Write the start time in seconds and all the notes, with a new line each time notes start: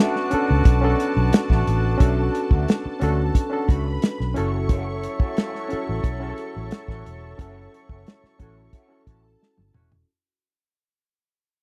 Already playing: B3 C#4 D4 F#4 A4 A5
0.00 F#3 A3 D4 F#4
0.16 snare
0.31 C#4 D4 F#4 A4, muted clean electric guitar stroke, muted fingered electric bass stroke, closed hi-hat
0.50 C#2, muted clean electric guitar stroke
0.65 B1, muted clean electric guitar stroke, kick, closed hi-hat
0.81 F#3 A3 C#4 D4 F#4 A4
1.00 muted clean electric guitar stroke, closed hi-hat
1.16 B1, muted clean electric guitar stroke
1.33 muted clean electric guitar stroke, snare, closed hi-hat
1.49 A1 F#3 A3 D4 F#4, kick, snare
1.66 A1, muted clean electric guitar stroke, closed hi-hat
1.84 muted clean electric guitar stroke
1.98 B1 F#3 A3 C#4 D4 F#4 A4, kick, closed hi-hat
2.35 muted clean electric guitar stroke, closed hi-hat
2.51 D2 F#3 A3 D4 F#4, kick
2.68 snare, closed hi-hat
2.85 muted clean electric guitar stroke, muted fingered electric bass stroke
3.00 D2 F#3 A3 C#4 D4 F#4 A4, closed hi-hat
3.18 muted clean electric guitar stroke
3.35 kick, closed hi-hat
3.50 C#4 D4 F#4 A4, muted clean electric guitar stroke
3.68 C#2 F#3 A3 D4 F#4 B4 B5, kick, closed hi-hat
3.85 muted clean electric guitar stroke
4.01 muted clean electric guitar stroke, snare, closed hi-hat
4.18 B1, muted clean electric guitar stroke, snare
4.34 F#1 E3 F#3 A3 C#4 E4 F#4 A4 C#5 C#6, closed hi-hat
4.52 muted clean electric guitar stroke
4.68 E3 A3 C#4 F#4, kick, closed hi-hat
4.86 muted clean electric guitar stroke
5.03 muted clean electric guitar stroke, closed hi-hat
5.19 E3 A3 C#4 F#4, muted fingered electric bass stroke, kick
5.36 D#3 G#3 C4 F4, snare, closed hi-hat
5.49 E3 A3 C#4 F#4
5.55 snare
5.69 C#4 E4 F#4 A4, muted clean electric guitar stroke, closed hi-hat
5.73 muted fingered electric bass stroke
5.86 A1, muted clean electric guitar stroke
6.03 B1, muted clean electric guitar stroke, kick, closed hi-hat
6.20 E3 A3 C#4 E4 F#4 G#4
6.30 A4
6.38 closed hi-hat
6.54 A1, muted clean electric guitar stroke
6.71 snare, closed hi-hat
6.88 A1 E3 A3 C#4 F#4, kick, snare
7.04 E1, muted clean electric guitar stroke, closed hi-hat
7.22 muted clean electric guitar stroke
7.38 F#1 E3 A3 C#4 E4 F#4 A4, kick, closed hi-hat
7.72 muted clean electric guitar stroke, closed hi-hat
7.89 F#1 E3 A3 C#4 F#4, kick
8.07 snare, closed hi-hat
8.23 muted clean electric guitar stroke, muted fingered electric bass stroke, snare
8.39 A1 E3 A3 C#4 E4 F#4 A4, kick, closed hi-hat
8.57 muted clean electric guitar stroke
8.73 E3 A3 C#4 F#4, kick, closed hi-hat
8.88 C#4 E4 F#4 A4, muted clean electric guitar stroke
9.07 A1 E3 A3 C#4 F#4 A4 A5, kick, closed hi-hat
9.24 muted clean electric guitar stroke
9.41 muted clean electric guitar stroke, snare
9.57 G1, muted clean electric guitar stroke, high tom
9.74 E1 E3 A3 C#4 F#4, mid tom
9.91 muted clean electric guitar stroke, floor tom